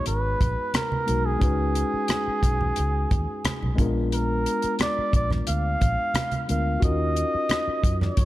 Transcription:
0.00 1.02 G#3 medium
0.00 1.05 B3 soft
0.00 1.04 D#4 soft
0.00 1.05 F#4 medium
0.00 1.05 G#4 medium
0.06 0.34 G#1 medium
0.06 0.76 B4 medium
0.06 closed hi-hat medium
0.06 muted conga soft
0.41 0.54 A#1 medium
0.41 kick medium
0.41 closed hi-hat medium
0.41 muted conga soft
0.41 low conga medium
0.74 1.27 A#4 medium
0.74 cross-stick loud
0.74 closed hi-hat medium
0.74 high conga soft
0.92 high conga medium
1.06 1.35 B1 medium
1.06 1.37 G#3 soft
1.06 1.41 B3 soft
1.06 1.40 D#4 soft
1.06 1.41 F#4 soft
1.06 1.42 A#4 soft
1.06 closed hi-hat medium
1.26 3.79 G#4 medium
1.39 1.82 C#2 medium
1.39 3.73 G#3 medium
1.39 3.73 C#4 medium
1.39 3.74 D#4 soft
1.39 3.75 F#4 medium
1.39 kick medium
1.39 closed hi-hat medium
1.44 3.75 B4 medium
1.75 closed hi-hat medium
1.94 muted fingered electric bass stroke soft
2.08 cross-stick loud
2.08 closed hi-hat medium
2.08 high conga medium
2.28 muted fingered electric bass stroke soft
2.43 2.70 B1 medium
2.43 kick medium
2.43 closed hi-hat medium
2.43 muted conga soft
2.61 low conga medium
2.76 3.05 C#2 medium
2.76 closed hi-hat medium
2.76 muted conga soft
3.11 3.25 D#2 medium
3.11 kick medium
3.11 closed hi-hat medium
3.11 muted conga soft
3.11 low conga medium
3.45 muted fingered electric bass stroke soft
3.45 cross-stick loud
3.45 closed hi-hat medium
3.45 high conga medium
3.63 3.76 B1 medium
3.63 high conga medium
3.75 4.45 A#1 medium
3.75 6.43 G#3 medium
3.75 6.44 B3 medium
3.75 6.44 D4 medium
3.75 kick medium
3.75 closed hi-hat medium
3.79 6.45 F4 medium
3.79 6.46 A#4 medium
4.12 4.76 A#4 medium
4.12 closed hi-hat medium
4.46 closed hi-hat medium
4.62 muted fingered electric bass stroke soft
4.62 closed hi-hat soft
4.79 5.12 D5 medium
4.79 cross-stick loud
4.79 closed hi-hat medium
4.79 high conga medium
4.98 muted fingered electric bass stroke soft
5.13 5.40 A#1 medium
5.13 5.31 D5 medium
5.13 kick medium
5.13 closed hi-hat medium
5.13 muted conga soft
5.30 cross-stick soft
5.30 low conga medium
5.47 5.75 D2 medium
5.47 6.45 F5 loud
5.47 closed hi-hat medium
5.47 muted conga soft
5.81 5.95 A#1 medium
5.81 kick medium
5.81 closed hi-hat medium
5.81 muted conga soft
5.81 low conga medium
6.14 cross-stick loud
6.14 closed hi-hat medium
6.14 high conga medium
6.32 closed hi-hat soft
6.32 high conga medium
6.48 6.76 D2 medium
6.48 6.82 G#3 soft
6.48 6.82 B3 soft
6.48 6.83 D4 soft
6.48 6.83 F4 soft
6.48 6.83 A#4 soft
6.48 6.81 F5 medium
6.48 closed hi-hat medium
6.80 7.23 D#2 medium
6.80 8.25 C#4 medium
6.80 8.25 D#4 soft
6.80 8.25 F4 soft
6.80 8.25 F#4 medium
6.80 7.97 D#5 loud
6.80 kick medium
6.80 closed hi-hat medium
6.85 8.25 A#4 medium
7.16 closed hi-hat medium
7.35 muted fingered electric bass stroke soft
7.49 cross-stick medium
7.49 closed hi-hat medium
7.49 high conga medium
7.68 muted fingered electric bass stroke soft
7.84 8.11 F#2 medium
7.84 kick medium
7.84 closed hi-hat medium
7.84 muted conga soft
8.01 8.25 C#5 medium
8.01 cross-stick soft
8.01 low conga medium
8.17 8.25 F2 medium
8.17 kick medium
8.17 closed hi-hat medium
8.17 muted conga soft

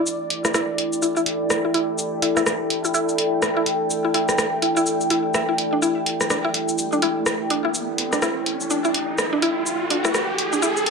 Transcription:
0.00 10.90 E4 medium
0.00 10.90 A4 medium
0.00 10.90 D5 medium
0.00 10.90 G5 medium
0.06 0.39 E1 loud
0.06 shaker medium
0.30 closed hi-hat medium
0.45 0.52 E1 loud
0.45 0.47 E4 medium
0.45 cross-stick medium
0.45 shaker soft
0.54 0.61 E4 loud
0.54 cross-stick medium
0.54 shaker medium
0.78 closed hi-hat medium
0.93 1.00 E1 medium
0.93 shaker soft
1.02 1.06 E4 medium
1.02 shaker medium
1.17 1.21 E4 loud
1.17 shaker soft
1.26 closed hi-hat medium
1.41 1.48 D1 medium
1.50 cross-stick medium
1.50 shaker medium
1.65 1.72 D1 medium
1.65 1.67 E4 medium
1.74 1.85 E1 medium
1.74 1.81 E4 loud
1.74 closed hi-hat medium
1.88 1.96 E1 medium
1.98 2.31 E1 loud
1.98 shaker medium
2.22 2.26 E4 medium
2.22 closed hi-hat loud
2.37 2.41 E4 loud
2.37 cross-stick medium
2.37 shaker soft
2.46 cross-stick medium
2.46 shaker medium
2.70 closed hi-hat loud
2.85 2.92 E1 medium
2.85 2.87 E4 medium
2.85 shaker soft
2.94 3.01 E4 loud
2.94 shaker medium
3.09 shaker soft
3.18 closed hi-hat loud
3.33 3.40 D1 medium
3.42 3.46 E4 medium
3.42 cross-stick medium
3.42 shaker medium
3.57 3.64 D1 medium
3.57 3.61 E4 loud
3.66 3.77 E1 medium
3.66 closed hi-hat medium
3.81 3.88 E1 medium
3.90 4.23 E1 loud
3.90 shaker medium
4.05 4.07 E4 medium
4.14 4.21 E4 loud
4.14 closed hi-hat loud
4.29 cross-stick medium
4.29 shaker soft
4.38 cross-stick medium
4.38 shaker medium
4.62 4.66 E4 medium
4.62 closed hi-hat medium
4.77 4.84 E1 medium
4.77 4.81 E4 loud
4.77 shaker soft
4.86 shaker medium
5.01 shaker soft
5.10 5.17 E4 medium
5.10 closed hi-hat medium
5.34 5.44 E5 medium
5.34 cross-stick medium
5.34 shaker medium
5.48 5.78 B1 medium
5.48 5.53 E4 medium
5.58 closed hi-hat medium
5.73 5.77 D4 medium
5.82 6.15 E1 loud
5.82 5.89 E4 loud
5.82 riser medium
5.82 shaker medium
6.06 closed hi-hat medium
6.21 cross-stick medium
6.21 shaker soft
6.30 6.37 D4 medium
6.30 cross-stick medium
6.30 shaker medium
6.45 6.49 E4 loud
6.54 closed hi-hat medium
6.68 6.76 E1 medium
6.68 shaker soft
6.78 shaker medium
6.93 6.97 D4 medium
6.93 shaker soft
7.02 7.09 E4 loud
7.02 closed hi-hat medium
7.17 7.24 D1 medium
7.26 cross-stick medium
7.26 shaker medium
7.40 7.48 D1 loud
7.50 7.61 E1 medium
7.50 7.57 D4 medium
7.50 closed hi-hat medium
7.65 7.72 E1 medium
7.65 7.69 E4 loud
7.74 shaker medium
7.98 closed hi-hat medium
8.13 8.17 D4 medium
8.13 cross-stick medium
8.13 shaker soft
8.22 8.29 E4 loud
8.22 cross-stick medium
8.22 shaker medium
8.46 closed hi-hat medium
8.61 shaker soft
8.70 8.77 D4 medium
8.70 shaker medium
8.85 8.89 E4 loud
8.85 shaker soft
8.94 closed hi-hat medium
9.18 cross-stick medium
9.18 shaker medium
9.33 9.37 D4 medium
9.42 9.49 E4 loud
9.42 closed hi-hat medium
9.66 shaker medium
9.90 9.97 D4 medium
9.90 closed hi-hat medium
10.05 10.09 E4 loud
10.05 cross-stick medium
10.05 shaker soft
10.14 cross-stick medium
10.14 shaker medium
10.38 closed hi-hat medium
10.53 10.57 D4 medium
10.53 shaker soft
10.62 10.69 E4 loud
10.62 shaker medium
10.77 shaker soft
10.86 closed hi-hat medium

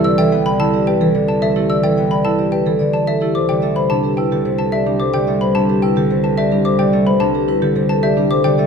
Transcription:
0.00 3.20 C2 medium
0.00 0.58 D3 medium
0.00 0.17 E3 medium
0.00 0.52 G3 medium
0.00 1.54 A3 medium
0.00 0.31 B3 medium
0.04 0.23 B4 medium
0.04 0.23 D5 medium
0.04 0.23 E6 medium
0.18 1.00 E3 medium
0.18 0.37 A4 loud
0.18 0.37 E5 medium
0.18 0.36 G5 loud
0.32 1.96 B3 medium
0.32 0.50 G5 medium
0.46 0.64 D5 medium
0.46 0.64 D5 loud
0.46 0.64 B5 medium
0.59 1.13 D3 medium
0.59 0.78 E4 medium
0.59 0.78 A4 medium
0.59 0.78 A5 loud
0.74 0.92 G4 medium
0.74 0.92 D5 medium
0.87 1.05 G4 medium
0.87 1.05 B4 loud
0.87 1.05 G5 medium
1.01 1.82 E3 medium
1.01 1.19 A4 loud
1.01 1.19 A4 medium
1.15 2.24 D3 medium
1.15 1.33 B4 medium
1.15 1.33 D5 medium
1.28 1.47 A4 medium
1.28 1.47 D5 medium
1.28 1.47 A5 medium
1.42 1.60 A4 loud
1.42 1.60 E5 medium
1.42 1.61 E5 medium
1.56 3.20 A3 medium
1.56 1.74 E4 medium
1.56 1.74 G4 medium
1.70 1.88 B4 medium
1.70 1.88 D5 medium
1.70 1.88 E6 medium
1.83 2.65 E3 medium
1.83 2.02 A4 loud
1.83 2.02 E5 medium
1.83 2.02 G5 medium
1.97 5.88 B3 medium
1.97 2.16 B4 medium
1.97 2.15 G5 medium
2.11 2.29 D5 medium
2.11 2.29 B5 medium
2.25 2.80 D3 medium
2.25 2.43 E4 medium
2.25 2.43 A4 medium
2.25 2.43 A5 medium
2.38 2.57 G4 medium
2.38 2.57 D5 medium
2.52 2.71 G4 medium
2.52 2.70 B4 medium
2.52 2.70 G5 medium
2.66 3.37 E3 medium
2.66 2.84 A4 medium
2.79 3.38 D3 medium
2.79 2.98 B4 medium
2.79 2.98 D5 medium
2.93 3.12 A4 medium
2.93 3.12 D5 medium
2.93 3.12 A5 medium
3.07 3.26 A4 medium
3.07 3.25 E5 medium
3.07 3.26 E5 medium
3.21 3.38 A3 medium
3.21 3.39 E4 medium
3.21 3.39 G4 medium
3.35 8.67 C2 medium
3.35 3.53 A4 medium
3.35 3.53 C5 medium
3.35 3.53 D6 medium
3.49 4.31 D3 medium
3.49 3.67 G4 medium
3.49 3.67 D5 medium
3.49 3.67 G5 medium
3.62 5.27 A3 medium
3.62 3.81 A4 medium
3.62 3.80 E5 medium
3.76 3.95 B4 medium
3.76 3.94 C5 medium
3.76 3.94 B5 medium
3.90 4.44 C3 medium
3.90 4.08 D4 medium
3.90 4.08 A4 medium
3.90 4.08 A5 medium
4.03 4.22 G4 medium
4.03 4.22 B4 medium
4.17 4.36 E4 medium
4.17 4.36 B4 medium
4.17 4.35 G5 medium
4.31 5.13 D3 medium
4.31 4.50 G4 medium
4.31 4.49 A4 medium
4.45 5.54 C3 medium
4.45 4.63 A4 medium
4.45 4.63 C5 medium
4.58 4.77 A4 medium
4.58 4.77 B4 medium
4.58 4.77 A5 medium
4.72 4.91 G4 medium
4.72 4.91 D5 medium
4.72 4.91 E5 medium
4.86 6.50 G3 medium
4.86 5.05 D4 medium
4.86 5.05 G4 medium
5.00 5.18 A4 medium
5.00 5.18 C5 medium
5.00 5.18 D6 medium
5.14 5.95 D3 medium
5.14 5.32 G4 medium
5.14 5.32 D5 medium
5.14 5.32 G5 medium
5.27 6.92 A3 medium
5.27 5.46 A4 medium
5.27 5.46 E5 medium
5.41 5.60 B4 medium
5.41 5.60 C5 medium
5.41 5.59 B5 medium
5.55 6.09 C3 medium
5.55 5.73 D4 medium
5.55 5.73 A4 medium
5.55 5.73 A5 medium
5.69 5.87 G4 medium
5.69 5.87 B4 medium
5.82 6.01 E4 medium
5.82 6.01 B4 medium
5.82 6.01 G5 medium
5.96 6.78 D3 medium
5.96 6.15 G4 medium
5.96 6.15 A4 medium
6.10 7.19 C3 medium
6.10 6.28 A4 medium
6.10 6.28 C5 medium
6.24 6.42 A4 medium
6.24 6.42 B4 medium
6.24 6.42 A5 medium
6.38 6.56 G4 medium
6.38 6.56 D5 medium
6.38 6.56 E5 medium
6.51 8.16 G3 medium
6.51 6.70 D4 medium
6.51 6.70 G4 medium
6.65 6.83 A4 medium
6.65 6.83 C5 medium
6.65 6.83 D6 medium
6.79 7.60 D3 medium
6.79 6.97 G4 loud
6.79 6.97 D5 medium
6.79 6.97 G5 medium
6.93 8.57 A3 medium
6.93 7.11 A4 medium
6.93 7.11 E5 medium
7.07 7.25 B4 medium
7.07 7.25 C5 medium
7.07 7.25 B5 medium
7.20 7.74 C3 medium
7.20 7.38 D4 medium
7.20 7.39 A4 medium
7.20 7.38 A5 medium
7.34 7.52 G4 medium
7.34 7.52 B4 medium
7.48 7.66 E4 medium
7.48 7.66 B4 medium
7.62 8.43 D3 medium
7.62 7.80 G4 loud
7.62 7.80 A4 medium
7.75 8.67 C3 medium
7.75 7.94 A4 medium
7.75 7.94 C5 medium
7.89 8.08 A4 loud
7.89 8.07 B4 medium
7.89 8.07 A5 medium
8.03 8.21 G4 loud
8.03 8.21 D5 medium
8.03 8.21 E5 medium
8.17 8.67 G3 medium
8.17 8.35 D4 medium
8.17 8.35 G4 medium
8.31 8.49 A4 medium
8.31 8.49 C5 medium
8.31 8.49 D6 medium
8.44 8.67 D3 medium
8.44 8.62 G4 loud
8.44 8.63 D5 medium
8.44 8.62 G5 medium
8.58 8.67 A3 medium
8.58 8.67 A4 medium
8.58 8.67 E5 medium

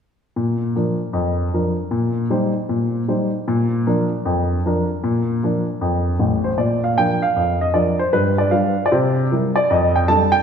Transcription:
0.36 0.69 A#2 medium
0.76 0.97 F3 soft
0.76 0.97 D4 soft
0.76 0.97 A#4 soft
1.13 1.46 F2 medium
1.54 1.75 F3 soft
1.54 1.75 D4 soft
1.54 1.75 A#4 soft
1.91 2.24 A#2 medium
2.30 2.52 G3 soft
2.30 2.52 D#4 soft
2.30 2.52 C5 soft
2.69 3.02 A#2 medium
3.08 3.30 G3 soft
3.08 3.30 D#4 soft
3.08 3.30 C5 soft
3.48 3.80 A#2 medium
3.87 4.08 F3 soft
3.87 4.08 D4 soft
3.87 4.08 A#4 soft
4.25 4.58 F2 medium
4.65 4.86 F3 soft
4.65 4.87 D4 soft
4.65 4.87 A#4 soft
5.04 5.36 A#2 medium
5.43 5.64 F3 soft
5.43 5.65 D4 soft
5.43 5.65 A#4 soft
5.81 6.14 F2 medium
6.19 6.50 A1 soft
6.19 6.50 A2 medium
6.44 6.58 C5 medium
6.58 6.91 A#2 medium
6.58 6.83 D5 medium
6.84 6.97 F5 medium
6.98 7.19 F3 soft
6.98 7.19 D4 soft
6.98 7.20 A#4 soft
6.98 7.23 G5 medium
7.22 7.61 F5 medium
7.36 7.69 F2 soft
7.61 7.75 D#5 medium
7.74 7.96 F3 soft
7.74 7.96 D4 soft
7.74 7.97 A#4 soft
7.74 8.00 D5 medium
7.99 8.13 C5 medium
8.13 8.46 G2 medium
8.13 8.39 B4 medium
8.38 8.52 D5 medium
8.51 8.73 G3 soft
8.51 8.74 D4 soft
8.51 8.74 B4 soft
8.51 8.84 F5 medium
8.86 8.92 D5 medium
8.92 9.25 C3 medium
8.92 9.30 C5 medium
9.32 9.53 G3 soft
9.32 9.53 E4 soft
9.32 9.53 A#4 soft
9.56 9.69 D5 medium
9.70 10.03 F2 medium
9.70 9.95 D#5 medium
9.96 10.09 G5 medium
10.08 10.30 G3 soft
10.08 10.30 D4 soft
10.08 10.30 A4 soft
10.08 10.34 A5 medium
10.32 10.43 G5 medium

